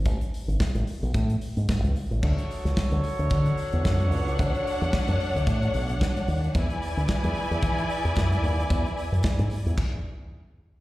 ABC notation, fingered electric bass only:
X:1
M:4/4
L:1/16
Q:"Swing 16ths" 1/4=111
K:Dlyd
V:1 name="Fingered electric bass" clef=bass
A,,, z2 G,,, z A,,, z B,,, A,,2 z G,, A,,, C,, z A,,, | D,, z2 C,, z D,, z D,, D,2 z E,, F,,2 C,,2 | D,, z2 E,, z F,, z D,, A,,2 B,,,2 z2 ^D,,2 | E,, z2 D,, z E,, z E,, E,2 z E,, F,,2 ^D,,2 |
E,, z2 F,, z G,, z E,, z8 |]